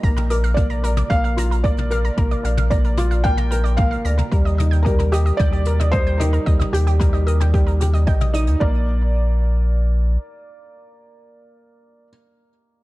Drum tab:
HH |xxxxxxxxxxxxxxxx|xxxxxxxxxxxxxxxx|xxxxxxxxxxxxxxxx|xxxxxxxxxxxxxxxx|
T2 |-o--o--o--o--o--|o--o--o--o--o--o|--o--o--o--o--o-|-o--o--o--o--o--|
BD |o---o---o---o---|o---o---o---o---|o---o---o---o---|o---o---o---o---|

HH |----------------|----------------|
T2 |----------------|----------------|
BD |o---------------|----------------|